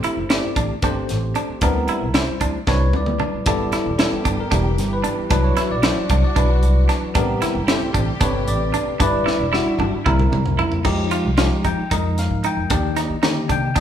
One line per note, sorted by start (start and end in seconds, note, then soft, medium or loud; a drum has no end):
0.00 0.20 A3 medium
0.00 0.21 C4 medium
0.00 0.21 G4 medium
0.00 0.53 C5 medium
0.00 closed hi-hat medium
0.04 0.24 E4 medium
0.04 muted upright bass stroke soft
0.17 0.40 G1 medium
0.30 0.73 A3 medium
0.30 0.73 C4 medium
0.30 0.50 E4 medium
0.30 0.74 G4 medium
0.30 0.74 D5 medium
0.30 snare loud
0.30 closed hi-hat medium
0.43 muted upright bass stroke soft
0.56 0.68 A1 medium
0.56 0.76 D4 medium
0.56 kick medium
0.56 closed hi-hat medium
0.82 1.09 G1 medium
0.82 1.62 A3 medium
0.82 1.61 C4 medium
0.82 1.03 D4 medium
0.82 1.62 G4 medium
0.82 1.62 C5 medium
0.82 kick medium
0.82 closed hi-hat medium
1.09 1.32 A1 medium
1.09 snare soft
1.09 closed hi-hat medium
1.35 1.55 D4 medium
1.35 closed hi-hat medium
1.49 muted upright bass stroke soft
1.61 1.85 D2 medium
1.61 2.05 G3 medium
1.61 2.06 B3 medium
1.61 2.05 C4 medium
1.61 1.82 D4 medium
1.61 2.05 E4 medium
1.61 2.11 A#4 medium
1.61 kick loud
1.61 closed hi-hat medium
1.88 2.08 E4 medium
1.88 muted upright bass stroke soft
1.88 closed hi-hat medium
2.02 2.25 C2 medium
2.14 2.58 G3 medium
2.14 2.58 C4 medium
2.14 2.58 E4 medium
2.14 2.35 E4 medium
2.14 2.58 C5 medium
2.14 snare loud
2.14 closed hi-hat medium
2.28 muted upright bass stroke soft
2.41 2.52 D2 medium
2.41 2.61 D4 medium
2.41 kick medium
2.41 closed hi-hat medium
2.67 2.94 C2 medium
2.67 3.45 G3 medium
2.67 3.47 C4 medium
2.67 2.88 D4 medium
2.67 3.45 E4 medium
2.67 3.47 B4 medium
2.67 2.93 C#5 medium
2.67 kick loud
2.67 snare medium
2.93 3.17 D2 medium
2.93 3.44 D5 medium
2.93 high tom medium
3.06 mid tom medium
3.20 3.40 D4 medium
3.20 mid tom medium
3.34 muted upright bass stroke soft
3.46 3.69 G1 medium
3.46 3.90 G3 medium
3.46 5.30 G3 medium
3.46 3.90 B3 medium
3.46 5.30 B3 medium
3.46 3.67 D4 medium
3.46 3.90 E4 medium
3.46 5.30 G4 medium
3.46 3.90 A4 medium
3.46 4.23 D5 medium
3.46 kick loud
3.46 closed hi-hat medium
3.72 3.93 E4 medium
3.72 muted upright bass stroke soft
3.72 snare soft
3.72 closed hi-hat medium
3.86 4.09 E1 medium
3.98 4.42 G3 medium
3.98 4.42 B3 medium
3.98 4.42 E4 medium
3.98 4.19 E4 medium
3.98 4.43 A4 medium
3.98 snare loud
3.98 closed hi-hat medium
4.12 muted upright bass stroke soft
4.25 4.37 G1 medium
4.25 4.45 D4 medium
4.25 kick medium
4.25 closed hi-hat medium
4.40 4.89 A#4 medium
4.51 4.79 E1 loud
4.51 5.31 G3 medium
4.51 5.31 B3 soft
4.51 4.71 D4 medium
4.51 5.30 E4 medium
4.51 5.31 G4 medium
4.51 kick loud
4.51 closed hi-hat medium
4.78 5.02 G1 medium
4.78 snare soft
4.78 closed hi-hat medium
4.93 5.30 B4 medium
5.04 5.24 D4 medium
5.04 closed hi-hat medium
5.18 muted upright bass stroke soft
5.30 5.54 C2 medium
5.30 5.74 F#3 medium
5.30 5.51 D4 medium
5.30 7.14 D4 medium
5.30 5.75 D4 medium
5.30 5.75 E4 medium
5.30 7.14 F#4 medium
5.30 5.75 B4 medium
5.30 kick loud
5.30 closed hi-hat medium
5.44 5.70 C#5 medium
5.57 5.77 E4 medium
5.57 muted upright bass stroke soft
5.57 snare soft
5.57 closed hi-hat medium
5.71 5.94 B1 medium
5.71 6.20 D5 medium
5.83 6.27 F#3 medium
5.83 6.27 D4 medium
5.83 6.03 E4 medium
5.83 6.27 E4 medium
5.83 6.28 C5 medium
5.83 snare loud
5.83 closed hi-hat medium
6.09 6.22 C2 medium
6.09 6.30 D4 medium
6.09 kick medium
6.09 closed hi-hat medium
6.24 6.99 D5 medium
6.36 6.63 B1 medium
6.36 7.15 F#3 medium
6.36 6.56 D4 medium
6.36 7.16 D4 medium
6.36 7.16 E4 medium
6.36 7.16 B4 medium
6.36 kick loud
6.36 closed hi-hat medium
6.63 6.86 C2 medium
6.63 closed hi-hat medium
6.89 7.09 D4 medium
6.89 snare soft
6.89 closed hi-hat medium
7.02 muted upright bass stroke soft
7.15 7.39 A1 medium
7.15 8.99 C3 medium
7.15 8.98 G3 medium
7.15 7.59 G3 medium
7.15 7.60 B3 medium
7.15 7.59 C4 medium
7.15 7.35 D4 medium
7.15 7.60 G4 medium
7.15 8.99 G4 medium
7.15 7.65 A#4 medium
7.15 kick loud
7.15 closed hi-hat medium
7.42 7.62 E4 medium
7.42 muted upright bass stroke soft
7.42 snare soft
7.42 closed hi-hat medium
7.55 7.78 G1 medium
7.68 8.12 A3 medium
7.68 8.12 C4 medium
7.68 7.88 E4 medium
7.68 8.12 G4 medium
7.68 8.12 C5 medium
7.68 snare loud
7.68 closed hi-hat medium
7.81 muted upright bass stroke soft
7.94 8.06 A1 medium
7.94 8.14 D4 medium
7.94 kick medium
7.94 closed hi-hat medium
8.21 8.46 G1 medium
8.21 9.00 A3 medium
8.21 9.00 C4 medium
8.21 8.41 D4 medium
8.21 9.01 G4 medium
8.21 9.01 B4 medium
8.21 8.47 C#5 medium
8.21 kick loud
8.21 closed hi-hat medium
8.46 8.70 A1 medium
8.46 8.97 D5 medium
8.46 closed hi-hat medium
8.74 8.94 D4 medium
8.74 closed hi-hat medium
8.87 muted upright bass stroke soft
8.99 9.23 G1 medium
8.99 10.04 D3 medium
8.99 10.83 G3 medium
8.99 9.44 G3 medium
8.99 9.20 D4 medium
8.99 9.44 D4 medium
8.99 10.83 E4 medium
8.99 9.45 E4 medium
8.99 9.45 B4 medium
8.99 9.76 D5 medium
8.99 kick loud
8.99 closed hi-hat medium
9.26 9.46 E4 medium
9.26 muted upright bass stroke soft
9.26 snare medium
9.39 9.62 E1 medium
9.53 9.97 G3 medium
9.53 9.97 D4 medium
9.53 9.73 E4 medium
9.53 9.97 E4 medium
9.53 9.97 F#4 medium
9.53 snare medium
9.66 muted upright bass stroke soft
9.79 9.91 G1 loud
9.79 10.00 D4 medium
9.79 high tom medium
10.06 10.29 C2 medium
10.06 10.85 C3 medium
10.06 10.85 G3 medium
10.06 10.85 A#3 medium
10.06 10.85 C4 medium
10.06 10.26 E4 medium
10.06 10.86 E4 medium
10.06 10.86 A#4 medium
10.06 kick medium
10.06 mid tom medium
10.19 mid tom medium
10.32 10.56 C2 medium
10.32 mid tom medium
10.46 floor tom medium
10.59 10.79 E4 medium
10.59 floor tom medium
10.72 muted upright bass stroke soft
10.72 floor tom medium
10.85 11.20 F2 medium
10.85 11.29 F3 medium
10.85 11.29 G#3 medium
10.85 11.05 D#4 medium
10.85 11.29 D#4 medium
10.85 11.29 G4 loud
10.85 kick medium
10.85 crash medium
11.11 11.31 F4 medium
11.11 closed hi-hat medium
11.25 11.48 C2 medium
11.37 11.81 F3 medium
11.37 11.81 G#3 medium
11.37 11.82 D#4 medium
11.37 11.58 F4 medium
11.37 11.82 G4 medium
11.37 snare loud
11.37 closed hi-hat medium
11.64 11.76 F2 medium
11.64 11.85 D#4 medium
11.64 11.91 G5 medium
11.64 kick medium
11.64 closed hi-hat medium
11.78 muted upright bass stroke soft
11.91 12.26 F2 medium
11.91 12.71 F3 medium
11.91 12.71 G#3 medium
11.91 12.11 D#4 medium
11.91 12.71 D#4 medium
11.91 12.71 A#4 medium
11.91 12.18 D#5 medium
11.91 kick medium
11.91 closed hi-hat medium
12.18 12.44 F5 medium
12.18 snare soft
12.18 closed hi-hat medium
12.31 12.42 G#2 medium
12.44 12.64 D#4 medium
12.44 12.95 G5 medium
12.44 closed hi-hat medium
12.57 12.69 F2 medium
12.70 13.05 D#2 medium
12.70 13.14 D#3 medium
12.70 13.14 A#3 medium
12.70 13.15 D4 medium
12.70 12.91 D4 medium
12.70 13.15 G4 medium
12.70 kick loud
12.70 closed hi-hat medium
12.96 13.17 D#4 medium
12.96 13.74 D#5 medium
12.96 snare soft
12.96 closed hi-hat medium
13.10 13.45 D#3 medium
13.23 13.68 D3 medium
13.23 13.67 D#3 medium
13.23 13.67 A#3 medium
13.23 13.43 D#4 medium
13.23 13.68 G4 medium
13.23 snare medium
13.23 closed hi-hat medium
13.49 13.73 C3 medium
13.49 13.70 D4 medium
13.49 13.77 G5 loud
13.49 kick medium
13.49 closed hi-hat medium
13.76 13.80 D#2 medium
13.76 13.80 D#3 medium
13.76 13.80 D4 medium
13.76 kick loud
13.76 closed hi-hat medium